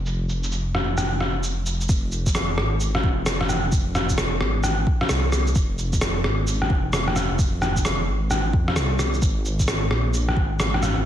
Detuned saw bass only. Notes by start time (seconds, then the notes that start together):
Already playing: F1
1.89 F1
2.58 G#1
3.04 F1
3.64 F1
4.41 G#1
5.10 C2
5.55 F1
6.24 G#1
6.70 F1
7.30 F1
8.08 G#1
8.53 F2
8.76 C2
9.22 G#1
9.91 A#1
10.37 G#1
10.97 G#1